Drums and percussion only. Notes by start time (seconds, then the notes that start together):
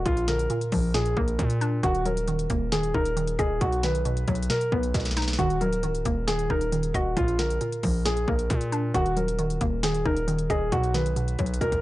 0.06 kick, closed hi-hat
0.17 closed hi-hat
0.28 snare, closed hi-hat
0.39 closed hi-hat
0.50 closed hi-hat
0.61 closed hi-hat
0.72 kick, open hi-hat
0.94 snare, closed hi-hat
1.06 closed hi-hat
1.17 kick
1.28 closed hi-hat
1.39 kick, closed hi-hat
1.50 closed hi-hat
1.61 closed hi-hat
1.83 kick, closed hi-hat
1.95 closed hi-hat
2.06 closed hi-hat
2.17 closed hi-hat
2.28 closed hi-hat
2.39 closed hi-hat
2.50 kick, closed hi-hat
2.72 snare, closed hi-hat
2.83 closed hi-hat
2.94 kick
3.05 closed hi-hat
3.17 closed hi-hat
3.27 closed hi-hat
3.39 kick, closed hi-hat
3.61 kick, closed hi-hat
3.72 closed hi-hat
3.83 snare, closed hi-hat
3.95 closed hi-hat
4.05 closed hi-hat
4.17 closed hi-hat
4.28 kick, closed hi-hat, open hi-hat
4.35 closed hi-hat
4.43 closed hi-hat
4.50 snare, closed hi-hat
4.61 closed hi-hat
4.72 kick
4.83 closed hi-hat
4.94 kick, snare, closed hi-hat
5.00 snare
5.05 snare, closed hi-hat
5.11 snare
5.17 snare, closed hi-hat
5.22 snare
5.28 snare
5.33 snare
5.39 kick, closed hi-hat
5.50 closed hi-hat
5.61 closed hi-hat
5.73 closed hi-hat
5.83 closed hi-hat
5.95 closed hi-hat
6.05 kick, closed hi-hat
6.28 snare, closed hi-hat
6.39 closed hi-hat
6.50 kick
6.61 closed hi-hat
6.72 closed hi-hat
6.83 closed hi-hat
6.94 kick, closed hi-hat
7.17 kick, closed hi-hat
7.28 closed hi-hat
7.39 snare, closed hi-hat
7.50 closed hi-hat
7.61 closed hi-hat
7.72 closed hi-hat
7.83 kick, open hi-hat
8.06 snare, closed hi-hat
8.17 closed hi-hat
8.28 kick
8.39 closed hi-hat
8.50 kick, closed hi-hat
8.61 closed hi-hat
8.72 closed hi-hat
8.94 kick, closed hi-hat
9.06 closed hi-hat
9.17 closed hi-hat
9.28 closed hi-hat
9.39 closed hi-hat
9.50 closed hi-hat
9.61 kick, closed hi-hat
9.83 snare, closed hi-hat
9.94 closed hi-hat
10.05 kick
10.17 closed hi-hat
10.28 closed hi-hat
10.39 closed hi-hat
10.50 kick, closed hi-hat
10.72 kick, closed hi-hat
10.83 closed hi-hat
10.94 snare, closed hi-hat
11.06 closed hi-hat
11.16 closed hi-hat
11.28 closed hi-hat
11.39 kick, closed hi-hat, open hi-hat
11.46 closed hi-hat
11.54 closed hi-hat
11.61 kick, closed hi-hat
11.72 kick, closed hi-hat